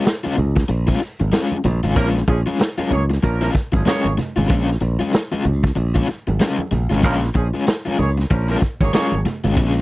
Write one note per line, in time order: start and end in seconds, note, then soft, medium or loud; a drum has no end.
0.05 muted overdriven electric guitar stroke soft
0.05 snare loud
0.05 closed hi-hat medium
0.05 tambourine loud
0.24 0.35 G#3 medium
0.24 0.36 C#4 medium
0.24 0.36 F4 medium
0.24 high conga medium
0.36 0.63 C#2 medium
0.36 muted overdriven electric guitar stroke medium
0.36 closed hi-hat medium
0.36 muted conga soft
0.36 low conga medium
0.56 muted overdriven electric guitar stroke soft
0.56 kick medium
0.56 snare soft
0.56 closed hi-hat medium
0.69 0.95 A#1 loud
0.69 muted overdriven electric guitar stroke soft
0.69 closed hi-hat medium
0.69 muted conga soft
0.87 0.99 G#3 medium
0.87 1.00 C#4 medium
0.87 1.01 F4 medium
0.87 kick medium
1.00 muted overdriven electric guitar stroke soft
1.00 snare soft
1.00 open hi-hat medium
1.20 1.31 G#1 medium
1.20 muted overdriven electric guitar stroke soft
1.20 closed hi-hat medium
1.20 high conga medium
1.32 1.55 G#3 medium
1.32 1.56 C#4 medium
1.32 1.56 F4 loud
1.32 snare loud
1.32 closed hi-hat medium
1.32 tambourine medium
1.32 high conga medium
1.52 high conga medium
1.64 1.80 A#1 loud
1.64 muted overdriven electric guitar stroke soft
1.64 closed hi-hat medium
1.64 muted conga soft
1.64 low conga medium
1.83 1.94 G#1 medium
1.83 1.94 G#3 medium
1.83 1.94 C#4 soft
1.83 1.94 F4 medium
1.83 low conga medium
1.96 2.21 A#1 loud
1.96 2.08 F3 loud
1.96 2.19 G#3 medium
1.96 2.08 A#3 loud
1.96 2.08 C#4 loud
1.96 2.19 C#4 medium
1.96 2.19 F4 medium
1.96 2.08 A#4 loud
1.96 kick loud
1.96 closed hi-hat loud
1.96 muted conga soft
2.17 snare soft
2.28 2.43 A#1 loud
2.28 2.40 F3 medium
2.28 2.40 G#3 medium
2.28 2.40 C#4 medium
2.28 2.40 G#4 medium
2.28 muted overdriven electric guitar stroke soft
2.28 kick medium
2.28 closed hi-hat medium
2.46 2.58 G#3 medium
2.46 2.57 C#4 medium
2.46 2.57 F4 medium
2.46 high conga medium
2.59 muted overdriven electric guitar stroke soft
2.59 snare loud
2.59 closed hi-hat medium
2.59 tambourine loud
2.59 muted conga soft
2.78 2.89 F3 medium
2.78 2.90 G#3 medium
2.78 2.89 A#3 medium
2.78 2.91 C#4 medium
2.78 2.89 C#4 medium
2.78 2.91 F4 medium
2.78 2.89 A#4 medium
2.78 high conga medium
2.91 3.17 C#2 medium
2.91 3.03 A#3 medium
2.91 3.03 C#4 medium
2.91 3.03 G#4 medium
2.91 3.03 C#5 medium
2.91 muted overdriven electric guitar stroke soft
2.91 closed hi-hat medium
2.91 high conga medium
2.91 low conga medium
3.10 muted overdriven electric guitar stroke soft
3.10 snare soft
3.10 closed hi-hat medium
3.23 3.49 A#1 loud
3.23 3.38 F3 medium
3.23 3.38 A#3 loud
3.23 3.38 C#4 medium
3.23 3.38 A#4 loud
3.23 muted overdriven electric guitar stroke soft
3.23 kick medium
3.23 closed hi-hat medium
3.23 muted conga soft
3.41 3.50 F3 medium
3.41 3.53 G#3 medium
3.41 3.50 A#3 medium
3.41 3.53 C#4 medium
3.41 3.50 C#4 medium
3.41 3.54 F4 medium
3.41 3.50 A#4 medium
3.54 muted overdriven electric guitar stroke soft
3.54 kick medium
3.54 snare soft
3.54 closed hi-hat medium
3.72 3.84 G#1 loud
3.72 3.84 F3 medium
3.72 3.84 G#3 medium
3.72 3.84 C#4 medium
3.72 3.84 G#4 medium
3.72 muted overdriven electric guitar stroke soft
3.72 kick loud
3.72 closed hi-hat soft
3.72 high conga medium
3.86 4.05 G#3 medium
3.86 4.12 A#3 loud
3.86 4.06 C#4 medium
3.86 4.12 C#4 loud
3.86 4.06 F4 medium
3.86 4.12 G#4 loud
3.86 4.12 C#5 loud
3.86 snare loud
3.86 closed hi-hat loud
3.86 tambourine medium
3.86 muted conga soft
3.86 high conga medium
4.04 4.16 G#1 medium
4.04 high conga medium
4.18 muted overdriven electric guitar stroke soft
4.18 snare soft
4.18 closed hi-hat medium
4.18 low conga medium
4.36 4.47 G#1 medium
4.36 4.47 G#3 soft
4.36 4.47 C#4 medium
4.36 4.47 F4 medium
4.36 low conga medium
4.48 4.75 A#1 loud
4.48 4.68 G#3 medium
4.48 4.69 C#4 medium
4.48 4.69 F4 medium
4.48 kick loud
4.48 closed hi-hat loud
4.71 snare soft
4.81 4.97 A#1 loud
4.81 muted overdriven electric guitar stroke soft
4.81 closed hi-hat medium
4.81 muted conga soft
4.99 5.11 G#3 soft
4.99 5.11 C#4 medium
4.99 5.10 F4 medium
4.99 high conga medium
5.13 muted overdriven electric guitar stroke medium
5.13 snare loud
5.13 closed hi-hat loud
5.13 tambourine loud
5.13 muted conga soft
5.32 5.43 G#3 medium
5.32 5.44 C#4 medium
5.32 5.45 F4 medium
5.32 high conga medium
5.45 5.70 C#2 loud
5.45 muted overdriven electric guitar stroke soft
5.45 closed hi-hat medium
5.45 muted conga soft
5.45 low conga medium
5.63 muted overdriven electric guitar stroke soft
5.63 kick medium
5.63 snare soft
5.63 closed hi-hat medium
5.75 6.02 A#1 loud
5.75 muted overdriven electric guitar stroke soft
5.75 closed hi-hat medium
5.75 muted conga soft
5.95 6.07 G#3 medium
5.95 6.07 C#4 medium
5.95 6.08 F4 medium
5.95 kick medium
6.08 muted overdriven electric guitar stroke soft
6.08 snare soft
6.08 closed hi-hat soft
6.08 muted conga soft
6.27 6.38 G#1 medium
6.27 muted overdriven electric guitar stroke medium
6.27 closed hi-hat medium
6.27 high conga medium
6.40 6.59 G#3 medium
6.40 6.59 C#4 medium
6.40 6.60 F4 medium
6.40 snare loud
6.40 closed hi-hat medium
6.40 tambourine medium
6.40 high conga medium
6.58 high conga medium
6.71 6.87 A#1 loud
6.71 muted overdriven electric guitar stroke soft
6.71 closed hi-hat medium
6.71 low conga medium
6.90 7.04 G#1 medium
6.90 7.01 G#3 soft
6.90 7.01 C#4 medium
6.90 7.00 F4 medium
6.90 snare soft
6.90 low conga medium
7.02 7.29 A#1 loud
7.02 7.15 F3 loud
7.02 7.22 G#3 medium
7.02 7.15 A#3 loud
7.02 7.22 C#4 medium
7.02 7.15 C#4 loud
7.02 7.23 F4 medium
7.02 7.15 A#4 loud
7.02 kick loud
7.02 closed hi-hat medium
7.02 muted conga soft
7.24 snare soft
7.34 7.50 A#1 medium
7.34 7.47 F3 medium
7.34 7.47 G#3 medium
7.34 7.47 C#4 medium
7.34 7.47 G#4 medium
7.34 muted overdriven electric guitar stroke soft
7.34 kick medium
7.34 closed hi-hat medium
7.34 muted conga soft
7.54 7.65 G#3 soft
7.54 7.64 C#4 soft
7.54 7.64 F4 medium
7.54 high conga medium
7.66 muted overdriven electric guitar stroke soft
7.66 snare loud
7.66 closed hi-hat loud
7.66 tambourine loud
7.85 7.96 F3 medium
7.85 7.97 G#3 medium
7.85 7.97 A#3 medium
7.85 7.98 C#4 medium
7.85 7.96 C#4 medium
7.85 7.98 F4 medium
7.85 7.97 A#4 medium
7.85 high conga medium
7.98 8.24 C#2 loud
7.98 8.10 A#3 medium
7.98 8.10 C#4 medium
7.98 8.10 G#4 medium
7.98 8.10 C#5 medium
7.98 muted overdriven electric guitar stroke medium
7.98 closed hi-hat medium
7.98 muted conga soft
7.98 high conga medium
7.98 low conga medium
8.17 muted overdriven electric guitar stroke soft
8.17 snare soft
8.17 closed hi-hat medium
8.30 8.55 A#1 loud
8.30 8.45 F3 medium
8.30 8.45 A#3 medium
8.30 8.45 C#4 loud
8.30 8.45 A#4 medium
8.30 muted overdriven electric guitar stroke soft
8.30 kick medium
8.30 closed hi-hat medium
8.30 muted conga soft
8.49 8.57 F3 medium
8.49 8.60 G#3 medium
8.49 8.57 A#3 medium
8.49 8.61 C#4 medium
8.49 8.57 C#4 medium
8.49 8.61 F4 medium
8.49 8.57 A#4 medium
8.61 muted overdriven electric guitar stroke soft
8.61 kick medium
8.61 snare soft
8.61 closed hi-hat medium
8.81 8.91 G#1 loud
8.81 8.91 A#3 medium
8.81 8.91 C#4 medium
8.81 8.91 G#4 medium
8.81 8.91 C#5 loud
8.81 muted overdriven electric guitar stroke medium
8.81 kick medium
8.81 closed hi-hat soft
8.81 high conga medium
8.93 9.13 G#3 medium
8.93 9.19 A#3 loud
8.93 9.19 C#4 loud
8.93 9.13 C#4 loud
8.93 9.13 F4 loud
8.93 9.19 G#4 loud
8.93 9.19 C#5 loud
8.93 muted fingered electric bass stroke soft
8.93 snare loud
8.93 closed hi-hat medium
8.93 tambourine medium
8.93 muted conga soft
8.93 high conga medium
9.12 9.23 G#1 medium
9.12 high conga medium
9.26 muted overdriven electric guitar stroke soft
9.26 snare soft
9.26 closed hi-hat medium
9.26 muted conga soft
9.26 low conga medium
9.44 9.55 G#1 medium
9.44 9.55 G#3 medium
9.44 9.55 C#4 medium
9.44 9.54 F4 medium
9.44 low conga medium
9.57 9.82 A#1 loud
9.57 9.79 G#3 medium
9.57 9.80 C#4 medium
9.57 9.80 F4 medium
9.57 kick loud
9.57 closed hi-hat medium
9.57 muted conga soft
9.77 snare soft